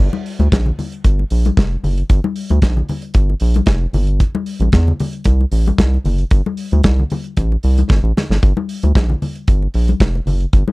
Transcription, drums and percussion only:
0.00 muted conga soft
0.13 high conga medium
0.26 open hi-hat medium
0.40 closed hi-hat soft
0.40 high conga medium
0.52 kick loud
0.52 snare loud
0.52 closed hi-hat medium
0.52 muted conga soft
0.66 muted conga soft
0.66 low conga medium
0.79 open hi-hat medium
0.79 high conga medium
0.79 low conga medium
0.92 closed hi-hat soft
1.04 kick medium
1.04 closed hi-hat medium
1.04 muted conga soft
1.19 muted conga soft
1.30 open hi-hat medium
1.45 closed hi-hat soft
1.45 high conga medium
1.57 kick loud
1.57 snare loud
1.57 closed hi-hat medium
1.84 open hi-hat medium
1.84 low conga medium
1.98 closed hi-hat soft
2.09 kick loud
2.09 closed hi-hat medium
2.09 muted conga soft
2.24 high conga medium
2.36 open hi-hat medium
2.49 closed hi-hat soft
2.49 high conga medium
2.62 kick loud
2.62 snare loud
2.62 closed hi-hat medium
2.62 muted conga soft
2.77 low conga medium
2.89 open hi-hat medium
2.89 high conga medium
2.89 low conga medium
3.02 closed hi-hat soft
3.14 kick loud
3.14 closed hi-hat medium
3.30 muted conga soft
3.40 open hi-hat medium
3.54 closed hi-hat soft
3.54 high conga medium
3.66 kick loud
3.66 snare loud
3.66 closed hi-hat medium
3.66 muted conga soft
3.94 open hi-hat medium
3.94 low conga medium
4.07 closed hi-hat soft
4.20 kick loud
4.20 closed hi-hat medium
4.20 muted conga soft
4.35 muted conga soft
4.35 high conga medium
4.46 open hi-hat medium
4.60 closed hi-hat soft
4.60 high conga medium
4.72 kick loud
4.72 snare loud
4.72 closed hi-hat medium
4.72 muted conga soft
4.88 muted conga soft
4.88 low conga medium
5.00 open hi-hat medium
5.00 high conga medium
5.00 low conga medium
5.13 closed hi-hat soft
5.24 kick loud
5.24 closed hi-hat medium
5.24 muted conga soft
5.41 muted conga soft
5.52 open hi-hat medium
5.66 closed hi-hat soft
5.66 high conga medium
5.78 kick loud
5.78 snare loud
5.78 closed hi-hat medium
5.78 muted conga soft
5.94 muted conga soft
6.05 open hi-hat medium
6.05 low conga medium
6.18 closed hi-hat soft
6.31 kick loud
6.31 closed hi-hat medium
6.31 muted conga soft
6.46 high conga medium
6.57 open hi-hat medium
6.71 closed hi-hat soft
6.71 high conga medium
6.83 kick loud
6.83 snare loud
6.83 closed hi-hat medium
6.83 muted conga soft
6.99 low conga medium
7.10 open hi-hat medium
7.10 high conga medium
7.10 low conga medium
7.24 closed hi-hat soft
7.37 kick medium
7.37 closed hi-hat medium
7.52 muted conga soft
7.63 open hi-hat medium
7.78 closed hi-hat soft
7.78 high conga medium
7.90 kick loud
7.90 snare medium
8.05 muted conga soft
8.17 snare medium
8.17 low conga medium
8.31 snare medium
8.43 kick loud
8.43 closed hi-hat medium
8.43 muted conga soft
8.57 high conga medium
8.69 open hi-hat medium
8.83 closed hi-hat soft
8.83 high conga medium
8.95 kick loud
8.95 snare loud
8.95 closed hi-hat medium
8.95 muted conga soft
9.10 low conga medium
9.22 open hi-hat medium
9.22 high conga soft
9.22 low conga medium
9.36 closed hi-hat soft
9.48 kick loud
9.48 closed hi-hat medium
9.48 muted conga soft
9.62 muted conga soft
9.74 open hi-hat medium
9.88 closed hi-hat soft
9.88 high conga medium
10.00 kick loud
10.00 snare loud
10.00 closed hi-hat medium
10.00 muted conga soft
10.15 muted conga soft
10.27 open hi-hat medium
10.27 low conga medium
10.41 closed hi-hat soft
10.53 kick loud
10.53 closed hi-hat medium
10.53 muted conga soft
10.68 high conga medium

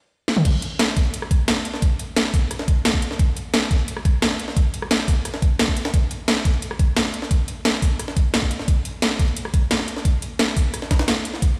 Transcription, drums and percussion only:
0.28 snare medium
0.37 mid tom medium
0.45 kick loud
0.45 closed hi-hat medium
0.45 crash loud
0.62 closed hi-hat medium
0.79 snare loud
0.79 closed hi-hat medium
0.88 snare soft
0.97 kick loud
0.97 closed hi-hat medium
0.97 open hi-hat medium
1.05 closed hi-hat soft
1.14 closed hi-hat medium
1.14 closed hi-hat loud
1.22 cross-stick soft
1.31 kick loud
1.31 closed hi-hat medium
1.48 snare loud
1.48 closed hi-hat medium
1.48 closed hi-hat loud
1.57 cross-stick soft
1.57 snare medium
1.65 closed hi-hat medium
1.74 snare soft
1.82 kick loud
1.82 closed hi-hat medium
1.99 closed hi-hat medium
2.16 snare loud
2.16 closed hi-hat medium
2.25 cross-stick soft
2.25 snare soft
2.34 kick loud
2.34 closed hi-hat medium
2.34 open hi-hat medium
2.51 cross-stick soft
2.51 closed hi-hat medium
2.59 snare soft
2.68 kick loud
2.68 closed hi-hat medium
2.85 snare loud
2.85 closed hi-hat medium
2.85 closed hi-hat loud
2.94 kick medium
3.02 closed hi-hat medium
3.11 snare soft
3.19 kick loud
3.19 closed hi-hat medium
3.36 closed hi-hat medium
3.54 snare loud
3.54 closed hi-hat medium
3.62 snare soft
3.71 kick loud
3.71 closed hi-hat medium
3.71 open hi-hat medium
3.79 closed hi-hat soft
3.88 closed hi-hat medium
3.97 cross-stick soft
4.05 kick loud
4.05 closed hi-hat medium
4.22 snare loud
4.22 closed hi-hat medium
4.31 cross-stick soft
4.31 snare medium
4.39 closed hi-hat medium
4.48 snare soft
4.57 kick loud
4.57 closed hi-hat medium
4.74 closed hi-hat medium
4.82 cross-stick medium
4.91 snare loud
4.91 closed hi-hat medium
4.99 cross-stick soft
4.99 snare soft
5.08 kick loud
5.08 closed hi-hat medium
5.08 open hi-hat medium
5.25 cross-stick soft
5.25 closed hi-hat medium
5.34 snare soft
5.42 kick loud
5.42 closed hi-hat medium
5.59 snare loud
5.59 closed hi-hat medium
5.68 kick medium
5.68 snare soft
5.77 closed hi-hat medium
5.77 open hi-hat medium
5.85 snare loud
5.85 closed hi-hat medium
5.94 kick loud
5.94 closed hi-hat medium
6.11 closed hi-hat medium
6.28 snare loud
6.28 closed hi-hat medium
6.37 snare soft
6.45 kick loud
6.45 closed hi-hat medium
6.45 open hi-hat medium
6.54 closed hi-hat soft
6.62 closed hi-hat medium
6.71 cross-stick soft
6.79 kick loud
6.79 closed hi-hat medium
6.96 snare loud
6.96 closed hi-hat medium
7.05 cross-stick soft
7.05 snare medium
7.14 closed hi-hat medium
7.22 snare soft
7.31 kick loud
7.31 closed hi-hat medium
7.48 closed hi-hat medium
7.65 snare loud
7.65 closed hi-hat medium
7.74 cross-stick soft
7.74 snare soft
7.82 kick loud
7.82 closed hi-hat medium
7.82 open hi-hat medium
7.99 cross-stick soft
7.99 closed hi-hat medium
8.08 snare soft
8.17 kick loud
8.17 closed hi-hat medium
8.34 snare loud
8.34 closed hi-hat medium
8.42 kick medium
8.51 closed hi-hat medium
8.59 snare soft
8.68 kick loud
8.68 closed hi-hat medium
8.85 closed hi-hat medium
9.02 snare loud
9.02 closed hi-hat medium
9.11 snare soft
9.19 kick loud
9.19 closed hi-hat medium
9.19 open hi-hat medium
9.28 closed hi-hat soft
9.36 closed hi-hat medium
9.36 closed hi-hat loud
9.45 cross-stick soft
9.54 kick loud
9.54 closed hi-hat medium
9.71 snare loud
9.71 closed hi-hat medium
9.79 cross-stick soft
9.79 snare medium
9.88 closed hi-hat medium
9.97 snare soft
10.05 kick loud
10.05 closed hi-hat medium
10.05 closed hi-hat loud
10.22 closed hi-hat medium
10.39 snare loud
10.39 closed hi-hat medium
10.39 closed hi-hat loud
10.48 cross-stick soft
10.48 snare soft
10.56 kick loud
10.56 closed hi-hat medium
10.56 open hi-hat medium
10.74 cross-stick soft
10.74 closed hi-hat medium
10.74 closed hi-hat loud
10.82 snare soft
10.91 kick loud
10.91 snare loud
10.91 closed hi-hat medium
10.99 snare loud
10.99 closed hi-hat medium
11.08 snare loud
11.08 closed hi-hat medium
11.08 closed hi-hat loud
11.25 closed hi-hat medium
11.34 snare soft
11.42 kick loud
11.42 closed hi-hat medium
11.42 closed hi-hat loud

